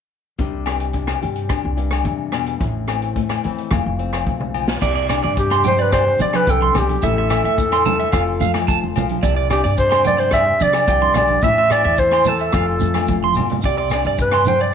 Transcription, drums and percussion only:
0.39 kick medium
0.39 closed hi-hat soft
0.66 cross-stick medium
0.66 closed hi-hat soft
0.66 low agogo medium
0.80 closed hi-hat soft
0.93 kick medium
0.93 closed hi-hat soft
1.07 cross-stick medium
1.07 low agogo medium
1.22 closed hi-hat soft
1.36 closed hi-hat soft
1.49 kick medium
1.49 cross-stick medium
1.49 closed hi-hat soft
1.49 low agogo medium
1.77 closed hi-hat soft
1.91 cross-stick medium
1.91 closed hi-hat soft
1.91 low agogo medium
2.05 kick medium
2.05 closed hi-hat soft
2.32 cross-stick medium
2.32 closed hi-hat soft
2.32 low agogo medium
2.46 closed hi-hat soft
2.61 kick medium
2.61 closed hi-hat soft
2.88 cross-stick medium
2.88 closed hi-hat soft
2.88 low agogo medium
3.02 closed hi-hat soft
3.16 kick medium
3.16 closed hi-hat soft
3.29 cross-stick medium
3.29 low agogo medium
3.44 closed hi-hat soft
3.58 closed hi-hat soft
3.71 kick medium
3.71 cross-stick medium
3.71 closed hi-hat soft
3.71 low agogo medium
3.99 closed hi-hat soft
4.13 cross-stick medium
4.13 closed hi-hat soft
4.13 low agogo medium
4.27 kick medium
4.40 mid tom soft
4.54 low agogo medium
4.68 snare medium
4.81 kick medium
4.81 crash medium
4.81 shekere medium
5.09 cross-stick medium
5.09 closed hi-hat soft
5.09 low agogo medium
5.09 shekere medium
5.23 closed hi-hat soft
5.37 kick medium
5.37 closed hi-hat soft
5.37 shekere medium
5.51 cross-stick medium
5.51 low agogo medium
5.64 closed hi-hat soft
5.64 high conga medium
5.64 low conga medium
5.64 shekere medium
5.79 closed hi-hat soft
5.92 kick medium
5.92 cross-stick medium
5.92 closed hi-hat soft
5.92 low agogo medium
5.92 shekere medium
6.19 closed hi-hat soft
6.19 high conga medium
6.19 shekere medium
6.33 cross-stick medium
6.33 closed hi-hat soft
6.33 high conga medium
6.33 low agogo medium
6.47 kick medium
6.47 closed hi-hat soft
6.47 shekere medium
6.61 high conga medium
6.75 cross-stick medium
6.75 closed hi-hat soft
6.75 low conga medium
6.75 low agogo medium
6.75 shekere medium
6.89 closed hi-hat medium
6.89 high conga medium
7.02 kick medium
7.02 closed hi-hat soft
7.02 shekere medium
7.30 cross-stick medium
7.30 closed hi-hat soft
7.30 low agogo medium
7.30 shekere medium
7.45 closed hi-hat soft
7.58 kick medium
7.58 closed hi-hat soft
7.58 shekere medium
7.72 cross-stick medium
7.72 low agogo medium
7.85 closed hi-hat soft
7.85 high conga medium
7.85 low conga medium
7.85 shekere medium
8.00 closed hi-hat soft
8.13 kick medium
8.13 cross-stick medium
8.13 closed hi-hat soft
8.13 low agogo medium
8.13 shekere medium
8.40 closed hi-hat soft
8.40 high conga medium
8.40 shekere medium
8.54 cross-stick medium
8.54 closed hi-hat soft
8.54 high conga medium
8.54 low agogo medium
8.68 kick medium
8.68 closed hi-hat soft
8.68 shekere medium
8.84 high conga medium
8.96 closed hi-hat soft
8.96 low conga medium
8.96 low agogo medium
8.96 shekere medium
9.09 closed hi-hat soft
9.09 high conga medium
9.23 kick medium
9.23 closed hi-hat soft
9.23 shekere medium
9.50 cross-stick medium
9.50 closed hi-hat soft
9.50 low agogo medium
9.50 shekere medium
9.65 closed hi-hat soft
9.77 kick medium
9.77 closed hi-hat soft
9.77 shekere medium
9.92 cross-stick medium
9.92 low agogo medium
10.04 closed hi-hat soft
10.04 high conga medium
10.04 low conga medium
10.04 shekere medium
10.18 closed hi-hat soft
10.31 kick medium
10.31 cross-stick medium
10.31 closed hi-hat medium
10.31 low agogo medium
10.31 shekere medium
10.60 closed hi-hat soft
10.60 high conga medium
10.60 shekere medium
10.73 cross-stick medium
10.73 closed hi-hat medium
10.73 low agogo medium
10.87 kick medium
10.87 closed hi-hat medium
10.87 shekere medium
11.03 high conga medium
11.14 cross-stick medium
11.14 closed hi-hat soft
11.14 low conga medium
11.14 low agogo medium
11.14 shekere medium
11.27 closed hi-hat soft
11.27 high conga medium
11.41 kick medium
11.41 closed hi-hat soft
11.41 low conga medium
11.41 shekere medium
11.70 cross-stick medium
11.70 closed hi-hat soft
11.70 low agogo medium
11.70 shekere medium
11.83 closed hi-hat soft
11.83 shekere soft
11.97 kick medium
11.97 closed hi-hat soft
11.97 shekere medium
12.11 cross-stick medium
12.11 low agogo medium
12.25 closed hi-hat soft
12.25 high conga medium
12.25 low conga medium
12.25 shekere medium
12.39 closed hi-hat soft
12.39 shekere soft
12.53 kick medium
12.53 cross-stick medium
12.53 closed hi-hat soft
12.53 low agogo medium
12.53 shekere medium
12.80 closed hi-hat soft
12.80 high conga medium
12.80 shekere medium
12.94 cross-stick medium
12.94 closed hi-hat soft
12.94 high conga medium
12.94 low agogo medium
12.94 shekere soft
13.07 kick medium
13.07 closed hi-hat soft
13.07 high conga soft
13.07 shekere medium
13.25 high conga medium
13.34 closed hi-hat soft
13.34 low agogo medium
13.34 shekere medium
13.38 low conga medium
13.49 closed hi-hat soft
13.49 low conga medium
13.62 kick medium
13.62 closed hi-hat soft
13.62 shekere medium
13.90 cross-stick medium
13.90 closed hi-hat soft
13.90 low agogo medium
13.90 shekere medium
14.04 closed hi-hat soft
14.18 kick medium
14.18 closed hi-hat soft
14.18 shekere medium
14.32 cross-stick medium
14.32 low agogo medium
14.45 closed hi-hat soft
14.45 high conga medium
14.45 low conga medium
14.45 shekere medium
14.60 closed hi-hat soft

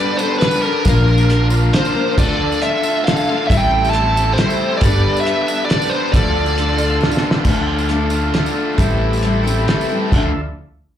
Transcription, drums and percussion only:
0.19 tambourine loud
0.41 snare medium
0.41 closed hi-hat medium
0.51 tambourine medium
0.85 kick loud
0.85 closed hi-hat medium
0.85 tambourine loud
1.07 tambourine soft
1.18 tambourine medium
1.30 closed hi-hat medium
1.50 tambourine loud
1.63 tambourine soft
1.73 snare medium
1.73 closed hi-hat medium
1.85 tambourine medium
2.17 kick loud
2.17 tambourine loud
2.17 crash loud
2.52 tambourine medium
2.62 closed hi-hat medium
2.83 tambourine loud
3.07 snare medium
3.07 closed hi-hat medium
3.17 tambourine medium
3.50 kick loud
3.50 closed hi-hat medium
3.50 tambourine loud
3.85 tambourine medium
3.93 closed hi-hat medium
4.17 tambourine loud
4.38 snare medium
4.38 closed hi-hat medium
4.50 tambourine medium
4.81 kick loud
4.81 closed hi-hat medium
4.81 tambourine loud
5.17 tambourine medium
5.26 closed hi-hat medium
5.48 tambourine loud
5.70 snare medium
5.70 closed hi-hat medium
5.82 tambourine medium
6.14 kick loud
6.14 closed hi-hat medium
6.14 tambourine medium
6.25 tambourine soft
6.37 tambourine soft
6.46 tambourine medium
6.58 closed hi-hat medium
6.68 tambourine soft
6.78 tambourine loud
7.01 snare medium
7.01 tambourine soft
7.11 tambourine medium
7.17 snare medium
7.31 snare loud
7.45 kick loud
7.45 crash loud
7.45 tambourine medium
7.56 tambourine soft
7.78 tambourine medium
7.89 closed hi-hat medium
7.89 tambourine soft
8.10 tambourine loud
8.34 snare medium
8.34 closed hi-hat medium
8.46 tambourine medium
8.78 kick loud
8.78 closed hi-hat medium
8.78 tambourine medium
8.92 tambourine soft
9.13 tambourine medium
9.23 closed hi-hat medium
9.23 tambourine soft
9.47 tambourine loud
9.68 snare loud
9.68 closed hi-hat medium
9.81 tambourine medium
10.12 kick loud
10.12 crash loud
10.12 tambourine medium

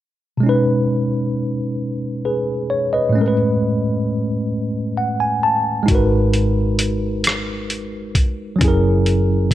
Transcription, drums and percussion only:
5.88 kick medium
5.88 closed hi-hat medium
6.33 closed hi-hat soft
6.79 closed hi-hat medium
7.24 cross-stick medium
7.24 closed hi-hat medium
7.70 closed hi-hat soft
8.15 kick medium
8.15 closed hi-hat soft
8.61 kick medium
8.61 closed hi-hat soft
9.06 closed hi-hat soft
9.51 kick medium

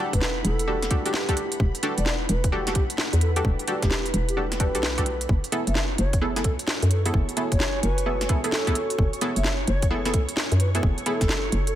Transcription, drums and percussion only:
0.13 kick loud
0.13 closed hi-hat medium
0.21 snare loud
0.45 closed hi-hat medium
0.59 closed hi-hat medium
0.82 snare medium
0.82 closed hi-hat medium
0.91 kick loud
0.91 closed hi-hat medium
1.06 closed hi-hat medium
1.14 snare loud
1.29 kick medium
1.29 closed hi-hat medium
1.37 closed hi-hat medium
1.52 closed hi-hat medium
1.60 kick loud
1.75 closed hi-hat soft
1.83 closed hi-hat loud
1.98 closed hi-hat medium
2.06 snare loud
2.29 closed hi-hat medium
2.44 kick loud
2.44 closed hi-hat medium
2.67 snare medium
2.67 closed hi-hat medium
2.75 kick loud
2.75 closed hi-hat loud
2.90 closed hi-hat medium
2.98 snare loud
3.13 closed hi-hat medium
3.21 closed hi-hat medium
3.36 closed hi-hat medium
3.45 kick loud
3.59 closed hi-hat soft
3.68 closed hi-hat loud
3.82 kick loud
3.82 snare medium
3.82 closed hi-hat medium
3.91 snare loud
4.06 closed hi-hat soft
4.14 closed hi-hat loud
4.29 closed hi-hat medium
4.52 snare medium
4.52 closed hi-hat medium
4.60 kick loud
4.60 closed hi-hat loud
4.75 closed hi-hat medium
4.83 snare loud
4.98 kick medium
4.98 closed hi-hat medium
5.06 closed hi-hat loud
5.21 closed hi-hat medium
5.29 kick loud
5.44 closed hi-hat soft
5.52 closed hi-hat loud
5.67 closed hi-hat medium
5.75 snare loud
5.98 closed hi-hat medium
6.13 kick loud
6.13 closed hi-hat medium
6.36 snare medium
6.36 closed hi-hat medium
6.44 kick loud
6.44 closed hi-hat loud
6.59 closed hi-hat medium
6.68 snare loud
6.82 closed hi-hat medium
6.91 closed hi-hat loud
7.06 closed hi-hat medium
7.14 kick loud
7.29 closed hi-hat soft
7.37 closed hi-hat loud
7.52 kick loud
7.52 closed hi-hat medium
7.60 snare loud
7.83 closed hi-hat medium
7.98 closed hi-hat medium
8.21 snare medium
8.21 closed hi-hat soft
8.29 kick loud
8.29 closed hi-hat loud
8.44 closed hi-hat medium
8.52 snare loud
8.67 kick medium
8.67 closed hi-hat medium
8.75 closed hi-hat medium
8.90 closed hi-hat medium
8.99 kick loud
9.13 closed hi-hat soft
9.21 closed hi-hat loud
9.36 closed hi-hat medium
9.44 snare loud
9.68 closed hi-hat medium
9.82 kick loud
9.82 closed hi-hat medium
10.05 snare medium
10.05 closed hi-hat soft
10.14 kick loud
10.14 closed hi-hat loud
10.29 closed hi-hat medium
10.37 snare loud
10.52 closed hi-hat soft
10.60 closed hi-hat medium
10.75 closed hi-hat medium
10.83 kick loud
10.98 closed hi-hat soft
11.06 closed hi-hat medium
11.21 kick loud
11.21 snare medium
11.21 closed hi-hat medium
11.29 snare loud
11.52 closed hi-hat medium
11.67 closed hi-hat medium

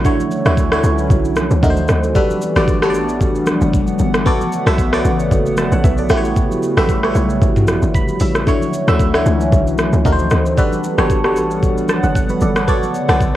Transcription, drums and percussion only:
0.04 kick loud
0.04 low conga medium
0.04 shaker medium
0.20 high conga medium
0.20 shaker medium
0.31 shaker loud
0.46 cross-stick loud
0.46 high conga medium
0.46 shaker medium
0.57 kick loud
0.57 shaker medium
0.72 cross-stick loud
0.72 shaker medium
0.84 shaker loud
0.98 shaker medium
1.10 kick loud
1.10 low conga medium
1.10 shaker medium
1.25 shaker medium
1.36 cross-stick medium
1.36 high conga medium
1.36 shaker medium
1.51 shaker medium
1.62 kick loud
1.62 low conga medium
1.62 shaker medium
1.77 high conga medium
1.77 shaker medium
1.88 cross-stick medium
1.88 shaker medium
2.03 shaker medium
2.15 kick loud
2.15 low conga medium
2.15 shaker medium
2.30 high conga medium
2.30 shaker medium
2.42 shaker medium
2.56 cross-stick loud
2.56 high conga medium
2.56 shaker medium
2.68 kick loud
2.68 shaker medium
2.82 cross-stick loud
2.82 shaker medium
2.94 shaker loud
3.09 shaker medium
3.20 kick loud
3.20 low conga medium
3.20 shaker medium
3.35 shaker soft
3.46 cross-stick medium
3.46 high conga medium
3.46 shaker medium
3.61 shaker medium
3.73 kick medium
3.73 low conga medium
3.73 shaker medium
3.87 high conga medium
3.87 shaker medium
3.99 shaker medium
4.14 cross-stick loud
4.14 shaker medium
4.25 kick loud
4.25 low conga medium
4.25 shaker medium
4.41 high conga medium
4.41 shaker medium
4.52 shaker loud
4.67 cross-stick loud
4.67 high conga medium
4.67 shaker medium
4.78 kick medium
4.78 shaker medium
4.93 cross-stick loud
4.93 shaker medium
5.05 shaker loud
5.19 shaker medium
5.31 kick loud
5.31 low conga medium
5.31 shaker medium
5.46 shaker medium
5.57 cross-stick medium
5.57 high conga medium
5.57 shaker medium
5.72 shaker medium
5.84 kick loud
5.84 low conga medium
5.84 shaker medium
5.98 high conga medium
5.98 shaker medium
6.09 cross-stick medium
6.09 shaker medium
6.25 shaker medium
6.36 kick loud
6.36 low conga medium
6.36 shaker medium
6.51 high conga medium
6.51 shaker medium
6.63 shaker loud
6.77 cross-stick loud
6.77 high conga medium
6.77 shaker medium
6.89 kick loud
6.89 shaker medium
7.03 cross-stick loud
7.03 shaker medium
7.15 shaker loud
7.30 shaker medium
7.42 kick loud
7.42 low conga medium
7.42 shaker medium
7.56 mid tom loud
7.56 shaker soft
7.67 cross-stick medium
7.67 high conga medium
7.67 shaker medium
7.82 shaker medium
7.94 kick loud
7.94 low conga medium
7.94 shaker medium
8.08 high conga medium
8.08 shaker medium
8.20 open hi-hat medium
8.20 shaker medium
8.35 cross-stick medium
8.35 shaker medium
8.47 kick loud
8.47 low conga medium
8.47 shaker medium
8.62 high conga medium
8.62 shaker medium
8.73 shaker loud
8.88 cross-stick loud
8.88 high conga medium
8.88 shaker medium
8.99 kick loud
8.99 shaker medium
9.14 cross-stick loud
9.14 shaker medium
9.26 shaker loud
9.40 shaker medium
9.52 kick loud
9.52 low conga medium
9.52 shaker medium
9.67 shaker soft
9.78 cross-stick loud
9.78 high conga medium
9.78 shaker medium
9.93 shaker medium
10.04 kick loud
10.04 low conga medium
10.04 shaker medium
10.19 high conga medium
10.19 shaker soft
10.30 cross-stick medium
10.30 shaker medium
10.46 shaker medium
10.57 kick loud
10.57 low conga medium
10.57 shaker medium
10.72 high conga medium
10.72 shaker medium
10.84 shaker loud
10.98 cross-stick loud
10.98 high conga medium
10.98 shaker medium
11.10 kick loud
11.10 shaker medium
11.24 cross-stick loud
11.24 shaker medium
11.36 shaker loud
11.51 shaker medium
11.63 kick loud
11.63 low conga medium
11.63 shaker medium
11.78 shaker medium
11.88 cross-stick medium
11.88 high conga medium
11.88 shaker medium
12.03 shaker medium
12.15 kick loud
12.15 low conga medium
12.15 shaker medium
12.29 high conga medium
12.29 shaker medium
12.41 shaker medium
12.56 cross-stick loud
12.56 shaker medium
12.68 kick loud
12.68 low conga medium
12.68 shaker medium
12.83 high conga medium
12.83 shaker medium
12.94 shaker medium
13.09 cross-stick loud
13.09 high conga medium
13.09 shaker medium
13.20 kick loud
13.20 shaker medium

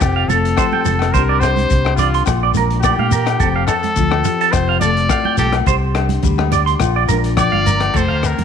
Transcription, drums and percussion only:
0.01 kick loud
0.01 cross-stick medium
0.01 closed hi-hat soft
0.01 low agogo medium
0.01 shekere medium
0.30 closed hi-hat soft
0.30 high conga medium
0.30 low conga medium
0.30 shekere medium
0.45 closed hi-hat soft
0.57 kick medium
0.57 cross-stick medium
0.57 closed hi-hat medium
0.57 low agogo medium
0.57 shekere medium
0.73 high conga medium
0.85 closed hi-hat soft
0.85 high conga medium
0.85 low conga medium
0.85 shekere medium
0.99 cross-stick medium
0.99 closed hi-hat soft
0.99 low agogo medium
1.14 kick medium
1.14 closed hi-hat medium
1.14 shekere medium
1.41 cross-stick medium
1.41 closed hi-hat soft
1.41 low agogo medium
1.41 shekere medium
1.56 closed hi-hat soft
1.56 high conga medium
1.56 shekere soft
1.70 kick medium
1.70 closed hi-hat medium
1.70 shekere medium
1.85 cross-stick medium
1.85 low agogo medium
1.98 closed hi-hat medium
1.98 low conga medium
1.98 shekere medium
2.14 closed hi-hat medium
2.26 kick loud
2.26 cross-stick medium
2.26 closed hi-hat medium
2.26 low agogo medium
2.26 shekere medium
2.54 closed hi-hat medium
2.54 high conga medium
2.54 low conga medium
2.54 shekere medium
2.70 closed hi-hat medium
2.83 kick medium
2.83 cross-stick medium
2.83 closed hi-hat medium
2.83 low agogo medium
2.83 shekere medium
2.99 high conga medium
3.11 closed hi-hat soft
3.11 high conga medium
3.11 low conga medium
3.11 shekere loud
3.26 cross-stick medium
3.26 closed hi-hat medium
3.26 low agogo medium
3.40 kick medium
3.40 closed hi-hat medium
3.40 shekere medium
3.67 cross-stick medium
3.67 closed hi-hat soft
3.67 low agogo medium
3.67 shekere medium
3.83 closed hi-hat soft
3.83 high conga medium
3.83 shekere soft
3.96 kick medium
3.96 closed hi-hat soft
3.96 shekere medium
4.11 cross-stick medium
4.11 low agogo medium
4.25 closed hi-hat medium
4.25 low conga medium
4.25 shekere medium
4.41 closed hi-hat soft
4.53 kick medium
4.53 cross-stick medium
4.53 closed hi-hat medium
4.53 low agogo medium
4.53 shekere medium
4.81 closed hi-hat medium
4.81 high conga medium
4.81 low conga medium
4.81 shekere medium
4.97 closed hi-hat soft
5.09 kick medium
5.09 cross-stick medium
5.09 closed hi-hat soft
5.09 low agogo medium
5.09 shekere medium
5.25 high conga medium
5.37 closed hi-hat soft
5.37 high conga medium
5.37 low conga medium
5.37 shekere loud
5.53 cross-stick medium
5.53 closed hi-hat soft
5.53 low agogo medium
5.66 kick medium
5.66 closed hi-hat soft
5.66 shekere medium
5.95 cross-stick medium
5.95 closed hi-hat soft
5.95 low agogo medium
6.09 closed hi-hat medium
6.09 high conga medium
6.23 kick medium
6.23 closed hi-hat medium
6.23 low conga medium
6.23 shekere medium
6.38 cross-stick medium
6.38 high conga medium
6.38 low agogo medium
6.52 closed hi-hat medium
6.52 low conga medium
6.52 shekere medium
6.67 closed hi-hat soft
6.67 shekere soft
6.80 kick loud
6.80 cross-stick medium
6.80 closed hi-hat medium
6.80 low agogo medium
6.80 shekere medium
7.09 closed hi-hat medium
7.09 high conga medium
7.09 low conga medium
7.09 shekere medium
7.24 closed hi-hat medium
7.37 kick medium
7.37 cross-stick medium
7.37 closed hi-hat medium
7.37 low agogo medium
7.37 shekere medium
7.53 high conga medium
7.66 closed hi-hat medium
7.66 high conga medium
7.66 low conga medium
7.66 shekere medium
7.80 cross-stick medium
7.80 closed hi-hat medium
7.80 low agogo medium
7.94 kick medium
7.94 crash medium
7.94 shekere medium
8.23 cross-stick medium
8.23 closed hi-hat soft
8.23 low agogo soft
8.23 shekere medium
8.38 closed hi-hat soft
8.38 high conga medium
8.38 low conga medium
8.38 shekere soft

